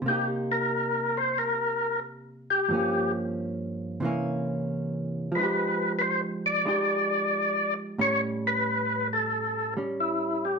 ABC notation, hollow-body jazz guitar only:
X:1
M:4/4
L:1/8
Q:"Swing" 1/4=91
K:Cphr
V:1 name="Hollow-body jazz guitar"
[C,B,EG]8 | [G,,F,B,D]4 [C,=E,B,D]4 | [F,A,EG]4 [A,EG]4 | [=A,,G,^C]4- [A,,G,C] [G,C]3 |]